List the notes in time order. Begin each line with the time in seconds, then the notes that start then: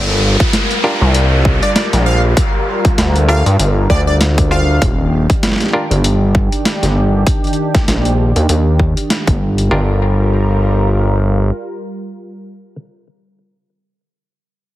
Already playing: G1 G3 F4 A#4, downlifter
0.40 kick, closed hi-hat
0.53 snare, closed hi-hat
0.71 closed hi-hat
0.84 D4 F4 G4 A#4
1.01 C2
1.15 closed hi-hat
1.45 kick
1.63 D5, closed hi-hat
1.76 D5, snare, closed hi-hat
1.93 A#1, snare, closed hi-hat
2.06 F5
2.37 kick, closed hi-hat
2.85 kick, closed hi-hat
2.98 D2, snare, closed hi-hat
3.16 closed hi-hat
3.29 D4 F4 G4 A#4 F5
3.46 G2, closed hi-hat
3.59 G1, closed hi-hat
3.90 D2 D5, kick
4.07 D5
4.21 snare, closed hi-hat
4.38 kick, closed hi-hat
4.51 D4 F4 G4 C5 F5
4.81 D#1 D#3 D4 G4, kick, closed hi-hat
5.30 kick, closed hi-hat
5.43 snare, closed hi-hat
5.47 snare
5.52 snare
5.56 snare
5.60 snare, closed hi-hat
5.64 snare
5.67 snare
5.71 D4 F4 G4 A#4, snare
5.91 G1, closed hi-hat
6.04 closed hi-hat
6.35 kick
6.52 closed hi-hat
6.65 snare, closed hi-hat
6.83 G1, snare, closed hi-hat
7.27 kick, closed hi-hat
7.44 closed hi-hat
7.47 closed hi-hat
7.53 closed hi-hat
7.75 kick, snare, closed hi-hat
7.88 A#1, snare, closed hi-hat
8.05 closed hi-hat
8.36 D#2, closed hi-hat
8.49 D#2, closed hi-hat
8.80 kick
8.97 closed hi-hat
9.10 snare, closed hi-hat
9.27 G1, kick, closed hi-hat
9.58 closed hi-hat
9.71 G1 G3 D4 F4 G4 A#4